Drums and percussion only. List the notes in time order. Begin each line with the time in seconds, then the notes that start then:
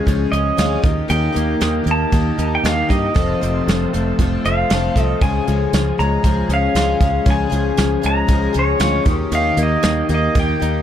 0.07 kick, closed hi-hat
0.33 closed hi-hat
0.58 snare, closed hi-hat
0.83 kick, closed hi-hat
1.10 closed hi-hat
1.36 closed hi-hat
1.61 snare, closed hi-hat
1.86 closed hi-hat
2.12 kick, closed hi-hat
2.39 closed hi-hat
2.65 snare, closed hi-hat
2.90 kick, closed hi-hat
3.16 kick, closed hi-hat
3.43 closed hi-hat
3.68 snare, closed hi-hat
3.94 closed hi-hat
4.19 kick, closed hi-hat
4.45 closed hi-hat
4.70 snare, closed hi-hat
4.96 kick, closed hi-hat
5.21 kick, closed hi-hat
5.47 closed hi-hat
5.73 snare, closed hi-hat
6.00 closed hi-hat
6.24 kick, closed hi-hat
6.50 closed hi-hat
6.75 snare, closed hi-hat
7.01 kick, closed hi-hat
7.26 kick, closed hi-hat
7.52 closed hi-hat
7.77 snare, closed hi-hat
8.03 closed hi-hat
8.28 kick, closed hi-hat
8.54 closed hi-hat
8.80 snare, closed hi-hat
9.05 kick, closed hi-hat
9.32 closed hi-hat
9.57 closed hi-hat
9.83 snare, closed hi-hat
10.09 closed hi-hat
10.35 kick, closed hi-hat
10.62 closed hi-hat